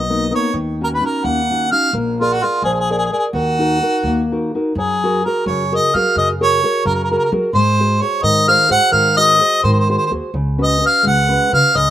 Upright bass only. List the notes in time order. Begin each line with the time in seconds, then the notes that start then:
Already playing: B1
0.54 D#2
1.24 D#2
1.93 A#1
2.62 A#1
3.33 D#2
4.03 D#2
4.75 F#2
5.46 F#2
5.94 F#3
6.16 F#2
6.85 F#2
7.32 F#3
7.53 G#2
8.23 G#2
8.70 G#2
8.93 G#2
9.64 G#2
10.11 D#2
10.34 C#2
11.05 C#2
11.53 C#3
11.76 C#2